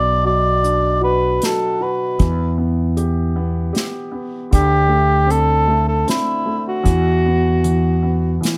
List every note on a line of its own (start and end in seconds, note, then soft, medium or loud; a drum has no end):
0.00 1.38 B1 medium
0.00 2.16 B2 medium
0.00 0.23 D5 loud
0.24 1.40 F#3 medium
0.24 1.00 D5 loud
0.63 2.16 D4 medium
0.63 closed hi-hat soft
1.01 1.79 F#4 medium
1.01 1.46 B4 medium
1.42 2.18 F#3 medium
1.42 1.84 A4 medium
1.42 snare medium
1.42 closed hi-hat medium
1.80 2.19 F#4 medium
1.80 2.59 B4 medium
2.19 3.71 E2 medium
2.19 4.48 E3 medium
2.19 kick medium
2.19 closed hi-hat soft
2.58 3.34 B3 medium
2.97 3.71 G4 medium
2.97 closed hi-hat soft
3.36 4.10 B3 medium
3.73 4.49 G4 medium
3.73 snare medium
3.73 closed hi-hat soft
4.12 4.50 B3 medium
4.51 6.04 D2 loud
4.51 6.81 D3 medium
4.51 5.32 G4 loud
4.51 kick medium
4.51 closed hi-hat medium
4.89 5.66 A3 medium
5.26 6.05 C4 medium
5.26 closed hi-hat soft
5.31 5.88 A4 loud
5.67 6.44 A3 medium
5.88 6.06 A4 medium
6.07 6.83 C4 medium
6.07 6.63 E4 medium
6.07 snare medium
6.07 closed hi-hat medium
6.46 6.84 A3 medium
6.69 8.40 F#4 medium
6.83 8.38 E2 medium
6.83 7.63 E3 medium
6.83 kick medium
6.83 closed hi-hat soft
7.25 8.01 B3 medium
7.64 8.39 E3 soft
7.64 closed hi-hat soft
8.03 8.58 B3 medium
8.41 8.58 E3 medium
8.41 closed hi-hat medium
8.45 snare medium